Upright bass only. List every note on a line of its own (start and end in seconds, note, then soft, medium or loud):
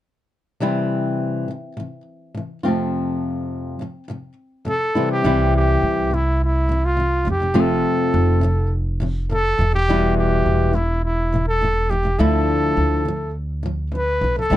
5.24 5.79 C2 medium
5.82 7.23 C2 medium
7.27 7.81 F1 medium
8.14 9.55 F1 medium
9.59 10.42 E1 medium
10.46 12.15 E1 medium
12.19 12.73 D2 medium
12.77 14.18 D2 medium
14.21 14.48 B1 medium
14.50 14.57 C2 medium